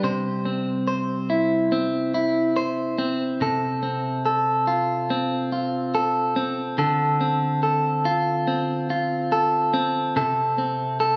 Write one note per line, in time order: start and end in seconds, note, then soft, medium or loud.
0.00 3.40 C3 medium
0.00 1.84 G3 medium
0.00 0.11 D4 soft
0.00 1.29 G4 soft
0.04 0.87 C5 medium
0.45 1.72 C4 soft
0.88 2.56 C5 medium
1.30 2.13 E4 soft
1.72 2.98 C4 soft
2.14 3.49 E4 soft
2.56 3.42 C5 medium
2.98 3.82 C4 medium
3.41 6.79 C3 medium
3.41 4.25 A4 medium
3.83 5.10 C4 soft
4.26 5.94 A4 medium
4.67 5.52 F4 medium
5.10 6.36 C4 medium
5.52 8.05 F4 soft
5.95 6.78 A4 medium
6.36 7.20 C4 medium
6.78 10.16 D3 medium
6.78 7.63 A4 medium
7.21 8.47 C4 medium
7.63 9.32 A4 medium
8.05 8.89 F4 medium
8.47 9.73 C4 medium
8.90 10.25 F4 medium
9.32 10.16 A4 medium
9.74 10.58 C4 medium
10.16 11.16 C3 medium
10.16 10.99 A4 medium
10.58 11.16 C4 medium
11.00 11.16 A4 medium